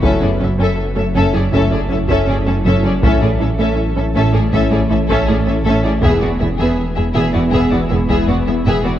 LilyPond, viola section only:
\new Staff \with { instrumentName = "Viola section" } { \time 4/4 \key fis \minor \tempo 4 = 80 cis'16 cis'16 cis'16 cis'16 r16 cis'16 cis'16 cis'16 cis'16 cis'16 cis'16 cis'16 cis'16 cis'16 cis'16 cis'16 | cis'16 cis'16 cis'16 cis'16 r16 cis'16 cis'16 cis'16 cis'16 cis'16 cis'16 cis'16 cis'16 cis'16 cis'16 cis'16 | b16 b16 b16 b16 r16 b16 b16 b16 b16 b16 b16 b16 b16 b16 b16 b16 | }